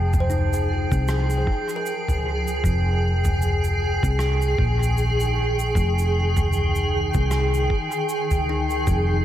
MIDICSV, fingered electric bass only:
0, 0, Header, 1, 2, 480
1, 0, Start_track
1, 0, Key_signature, -4, "minor"
1, 0, Tempo, 779221
1, 1625, Time_signature, 4, 2, 24, 8
1, 5697, End_track
2, 0, Start_track
2, 0, Title_t, "Fingered electric bass"
2, 0, Program_c, 0, 33
2, 0, Note_on_c, 0, 29, 97
2, 537, Note_off_c, 0, 29, 0
2, 565, Note_on_c, 0, 36, 95
2, 886, Note_off_c, 0, 36, 0
2, 1626, Note_on_c, 0, 29, 96
2, 2457, Note_off_c, 0, 29, 0
2, 2484, Note_on_c, 0, 36, 96
2, 2806, Note_off_c, 0, 36, 0
2, 2826, Note_on_c, 0, 34, 84
2, 3526, Note_off_c, 0, 34, 0
2, 3545, Note_on_c, 0, 29, 95
2, 4376, Note_off_c, 0, 29, 0
2, 4402, Note_on_c, 0, 36, 99
2, 4725, Note_off_c, 0, 36, 0
2, 5465, Note_on_c, 0, 29, 94
2, 5697, Note_off_c, 0, 29, 0
2, 5697, End_track
0, 0, End_of_file